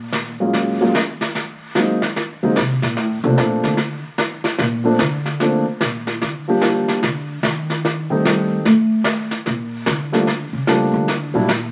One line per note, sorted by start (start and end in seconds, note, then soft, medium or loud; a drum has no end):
0.00 0.91 A#2 medium
0.12 snare medium
0.40 0.78 F#3 soft
0.40 0.78 G#3 soft
0.40 0.78 A#3 soft
0.40 0.78 C#4 soft
0.40 0.78 F4 soft
0.53 brush sweep medium
0.53 snare soft
0.81 0.93 F#3 medium
0.81 0.94 G#3 medium
0.81 0.94 A#3 medium
0.81 0.94 C#4 medium
0.81 0.94 F4 medium
0.95 snare medium
1.21 snare soft
1.35 brush sweep soft
1.35 snare soft
1.75 2.00 F#3 soft
1.75 2.00 G#3 soft
1.75 2.00 A#3 soft
1.75 2.00 C4 soft
1.75 2.01 D#4 medium
1.75 snare medium
2.02 snare soft
2.16 brush sweep soft
2.16 snare soft
2.43 2.57 D3 medium
2.43 2.55 F#3 medium
2.43 2.56 G#3 soft
2.43 2.56 A#3 soft
2.43 2.56 C4 soft
2.43 2.56 D#4 medium
2.56 2.82 C3 medium
2.56 snare medium
2.82 2.98 A#2 medium
2.82 snare soft
2.97 3.23 A2 medium
2.97 brush sweep soft
2.97 snare soft
3.24 3.37 C3 loud
3.24 3.76 F3 soft
3.24 3.76 A3 medium
3.24 3.76 A#3 soft
3.24 3.76 C4 medium
3.24 3.76 D4 medium
3.38 3.63 A#2 medium
3.38 snare medium
3.63 4.01 D3 medium
3.63 snare soft
3.77 brush sweep soft
3.77 snare soft
4.18 snare medium
4.44 snare soft
4.58 4.97 A#2 medium
4.58 brush sweep medium
4.58 snare soft
4.84 4.97 F3 medium
4.84 4.98 A3 soft
4.84 4.98 A#3 medium
4.84 4.98 C4 medium
4.84 4.98 D4 medium
4.99 5.62 D3 loud
4.99 snare medium
5.25 snare soft
5.40 5.63 F3 soft
5.40 5.63 A3 soft
5.40 5.64 A#3 soft
5.40 5.64 C4 soft
5.40 5.64 D4 medium
5.40 brush sweep soft
5.40 snare soft
5.81 6.19 A#2 medium
5.81 snare medium
6.07 snare soft
6.21 6.84 D3 medium
6.21 brush sweep soft
6.21 snare soft
6.48 6.99 F3 soft
6.48 7.00 G3 soft
6.48 7.00 A#3 soft
6.48 7.00 D4 soft
6.48 7.00 G4 medium
6.61 snare medium
6.88 snare soft
7.03 7.41 D3 medium
7.03 brush sweep soft
7.03 snare soft
7.43 8.06 D#3 medium
7.43 snare medium
7.70 snare soft
7.85 brush sweep soft
7.85 snare soft
8.10 8.62 D#3 soft
8.10 8.62 G3 soft
8.10 8.62 A3 soft
8.10 8.62 C4 soft
8.10 8.62 D#4 medium
8.25 8.62 G3 medium
8.25 snare medium
8.65 9.27 A3 medium
8.65 brush sweep soft
8.65 snare soft
9.04 snare medium
9.31 snare soft
9.46 9.84 A#2 medium
9.46 brush sweep soft
9.46 snare soft
9.86 10.49 D3 medium
9.86 snare medium
10.12 10.25 F3 medium
10.12 10.25 G3 medium
10.12 10.25 A3 medium
10.12 10.26 A#3 medium
10.12 10.26 D4 medium
10.12 snare soft
10.27 brush sweep medium
10.27 snare soft
10.53 10.90 C#3 medium
10.67 11.08 F3 medium
10.67 11.08 G3 soft
10.67 11.08 A3 soft
10.67 11.08 A#3 soft
10.67 11.08 D4 medium
10.67 snare medium
10.94 11.31 D3 medium
11.08 brush sweep soft
11.08 snare soft
11.34 11.72 A#2 medium
11.34 11.47 F#3 medium
11.34 11.47 G3 medium
11.34 11.47 A#3 soft
11.34 11.47 D4 medium
11.34 11.47 E4 medium
11.48 snare medium